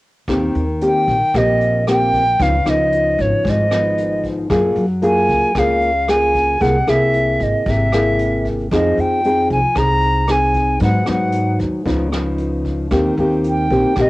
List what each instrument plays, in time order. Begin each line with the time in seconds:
0.28 upright bass D#2, nylon-string guitar D#3 A#3 C4 G4, kick, cross-stick, closed hi-hat
0.55 upright bass D#2, closed hi-hat
0.81 nylon-string guitar A#3 C4 G4, flute G5, closed hi-hat
1.08 upright bass A#1, kick, closed hi-hat
1.34 upright bass A#1, nylon-string guitar A#2 A#3 C4 G4, flute D#5, kick, cross-stick, closed hi-hat
1.60 closed hi-hat
1.87 nylon-string guitar A#3 C4 G4, flute G5, cross-stick, closed hi-hat
2.13 kick, closed hi-hat
2.39 upright bass C#2, nylon-string guitar C#3 F3 B3 D#4, flute F5, kick, closed hi-hat
2.65 upright bass C#2, nylon-string guitar F3 B3 D#4, cross-stick, closed hi-hat
2.69 flute D#5
2.92 closed hi-hat
3.19 upright bass G#1, flute C#5, kick, closed hi-hat
3.44 upright bass G#1, nylon-string guitar G#2, kick, closed hi-hat
3.50 flute D#5
3.71 nylon-string guitar F3 B3 D#4, cross-stick, closed hi-hat
3.98 closed hi-hat
4.24 kick, closed hi-hat
4.50 upright bass F#2, nylon-string guitar F#3 A#3 F4 G#4, kick, cross-stick, closed hi-hat
4.76 upright bass F#2, closed hi-hat
5.02 nylon-string guitar A#3 F4 G#4, flute G#5, closed hi-hat
5.29 upright bass C#2, kick, closed hi-hat
5.55 upright bass C#2, nylon-string guitar C#3 A#3 F4 G#4, flute F5, kick, cross-stick, closed hi-hat
5.81 closed hi-hat
6.08 nylon-string guitar A#3 F4 G#4, flute G#5, cross-stick, closed hi-hat
6.34 kick, closed hi-hat
6.60 upright bass C2, nylon-string guitar C3 A#3 E4 G#4, flute F#5, kick, closed hi-hat
6.87 upright bass C2, nylon-string guitar A#3 E4 G#4, flute E5, cross-stick, closed hi-hat
7.13 closed hi-hat
7.40 upright bass G#1, flute D#5, kick, closed hi-hat
7.65 upright bass G#1, nylon-string guitar C3, kick, closed hi-hat
7.70 flute E5
7.92 nylon-string guitar A#3 E4 G#4, cross-stick, closed hi-hat
8.19 closed hi-hat
8.45 kick, closed hi-hat
8.71 upright bass F2, nylon-string guitar F3 C4 D#4 G#4, flute D#5, kick, cross-stick, closed hi-hat
8.98 upright bass F2, flute G5, closed hi-hat
9.24 nylon-string guitar C4 D#4 G#4, closed hi-hat
9.50 upright bass C2, flute G#5, kick, closed hi-hat
9.76 upright bass C2, nylon-string guitar C3 C4 D#4 G#4, flute A#5, kick, cross-stick, closed hi-hat
10.02 closed hi-hat
10.28 nylon-string guitar C4 D#4 G#4, flute G#5, cross-stick, closed hi-hat
10.54 kick, closed hi-hat
10.79 upright bass G#2, nylon-string guitar G#2 F#3 B3 D#4, flute F#5, kick, closed hi-hat
11.06 upright bass G#2, nylon-string guitar F#3 B3 D#4, cross-stick, closed hi-hat
11.11 flute F#5
11.32 closed hi-hat
11.59 upright bass D#2, kick, closed hi-hat
11.85 upright bass C#2, nylon-string guitar C#3 F3 B3 D#4, kick, closed hi-hat
12.12 nylon-string guitar F3 B3 D#4, cross-stick, closed hi-hat
12.38 closed hi-hat
12.65 kick, closed hi-hat
12.91 upright bass D#2, nylon-string guitar D#3 A#3 C4 G4, kick, cross-stick, closed hi-hat
13.18 upright bass D#2, nylon-string guitar A#3 C4 G4, closed hi-hat
13.44 closed hi-hat
13.50 flute G5
13.71 upright bass A#1, nylon-string guitar A#3 C4 G4, kick, closed hi-hat
13.96 upright bass A#1, nylon-string guitar A#2 A#3 C4 G4, kick, cross-stick, closed hi-hat
14.01 flute D#5